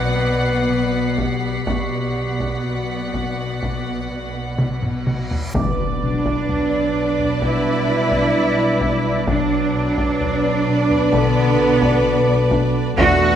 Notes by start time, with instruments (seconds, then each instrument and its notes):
Already playing: double bass section B1, harp B2 F#3, cello section B2, viola section B3, clarinet B4, violin section D5 F#5 B6 C7, vibraphone F#5
0.23 harp B2
0.70 harp B2
1.18 harp B3, clarinet G4, taiko
1.66 double bass section B1, cello section B2, harp B2, viola section B3, clarinet G4, vibraphone D5 C#6, violin section D5 F#5, taiko, reverse cymbal
2.16 harp B2
2.40 taiko
2.53 violin section B6
2.64 harp B2, clarinet F#4
3.14 harp B2, taiko
3.63 harp B2, taiko
4.10 harp B2
4.58 harp B2, taiko mid
4.82 taiko low-mid
5.07 harp B3, taiko mid
5.31 taiko low
5.54 double bass section B1, harp B2, french horn section B3 B4, viola section D4, vibraphone B4 D6, violin section B4 D5 D6 F#6 A6, taiko, impact
6.01 harp B2, clarinet F#3, cello section D4
6.26 taiko
6.49 harp B3, taiko low
6.96 harp B2
7.19 taiko low
7.42 harp B2, clarinet G3, cello section E4, taiko
7.89 harp B2
8.12 taiko
8.35 harp B2
8.81 harp B3, taiko
9.27 double bass section B1, harp B2, clarinet F#3, french horn section B3 B4, cello section D4, viola section D4, violin section B4 D5, taiko
9.75 harp B2
9.98 taiko
10.21 harp B3, taiko low
10.68 harp B2
10.90 taiko low
11.11 harp B2, clarinet D3, cello section B3, vibraphone A4 A5, taiko
11.58 harp B2
11.82 taiko
12.04 harp B2
12.51 harp B3, taiko
12.96 double bass section E2, harp E2, viola section A3, clarinet A3, french horn section B3 A4, vibraphone D4 D5, cello section F#4, violin section B4 E5 E6, taiko